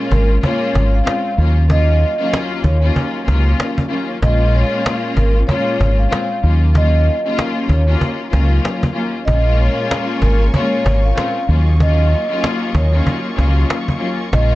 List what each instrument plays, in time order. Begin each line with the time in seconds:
Already playing: string section A#2 G#3 A#3 C#4 F4
0.11 fingered electric bass G#1, vibraphone A#4, cajon bass
0.43 string section A#2 G#3 A#3 C#4 F4, vibraphone C#5, cajon bass
0.75 fingered electric bass G#1, cajon bass
0.95 vibraphone F5
1.05 string section A#2 G#3 C4 C#4 F4, vibraphone F5, cajon slap
1.38 fingered electric bass D#2, string section D#2 F#3 A#3 C#4 F4
1.69 string section D#2 F#3 A#3 C#4 F4, vibraphone D#5, cajon bass
2.20 string section D#2 F#3 A#3 C#4 F4
2.33 cajon slap
2.64 fingered electric bass D#2, vibraphone C#5, cajon bass
2.83 string section D#2 F#3 A#3 C#4 F4
2.96 cajon bass
3.26 fingered electric bass C#2, string section D#2 F#3 A#3 C#4 F4, cajon bass
3.60 cajon slap
3.78 cajon bass
3.89 string section D#2 F#3 A#3 C#4 F4
4.22 fingered electric bass A#1, string section A#2 G#3 A#3 C#4 F4, vibraphone D#5, cajon bass
4.55 vibraphone C#5
4.86 cajon slap
5.17 fingered electric bass G#1, vibraphone A#4, cajon bass
5.47 string section A#2 G#3 A#3 C#4 F4, vibraphone C#5, cajon bass
5.80 fingered electric bass G#1, cajon bass
5.99 vibraphone F5
6.10 string section A#2 G#3 C4 C#4 F4, vibraphone F5, cajon slap
6.43 fingered electric bass D#2, string section D#2 F#3 A#3 C#4 F4
6.74 string section D#2 F#3 A#3 C#4 F4, vibraphone D#5, cajon bass
7.25 string section D#2 F#3 A#3 C#4 F4
7.39 cajon slap
7.69 fingered electric bass D#2, vibraphone C#5, cajon bass
7.88 string section D#2 F#3 A#3 C#4 F4
8.01 cajon bass
8.31 fingered electric bass C#2, string section D#2 F#3 A#3 C#4 F4, cajon bass
8.65 cajon slap
8.83 cajon bass
8.94 string section D#2 F#3 A#3 C#4 F4
9.25 fingered electric bass A#1, string section A#2 G#3 A#3 C#4 F4 A#4 G#5 C#6, vibraphone D#5, cajon bass
9.60 vibraphone C#5, cajon slap
9.91 cajon slap
10.22 fingered electric bass G#1, vibraphone A#4, cajon bass
10.54 string section A#2 G#3 A#3 C#4 F4, vibraphone C#5, cajon bass
10.86 fingered electric bass G#1, cajon bass
11.05 vibraphone F5
11.15 string section A#2 G#3 C4 C#4 F4, vibraphone F5, cajon slap
11.47 fingered electric bass D#2, string section D#2 F#3 A#3 C#4 F4 D#5 C#6, cajon slap
11.79 string section D#2 F#3 A#3 C#4 F4, vibraphone D#5, cajon bass
12.13 cajon slap
12.30 string section D#2 F#3 A#3 C#4 F4
12.44 cajon slap
12.75 fingered electric bass D#2, vibraphone C#5, cajon bass
12.93 string section D#2 F#3 A#3 C#4 F4
13.07 cajon bass
13.36 fingered electric bass C#2, string section D#2 F#3 A#3 C#4 F4, cajon bass
13.70 cajon slap
13.88 cajon bass
13.99 string section D#2 F#3 A#3 C#4 F4, cajon slap
14.33 fingered electric bass A#1, string section A#2 G#3 A#3 C#4 F4 A#4 G#5, vibraphone D#5, cajon bass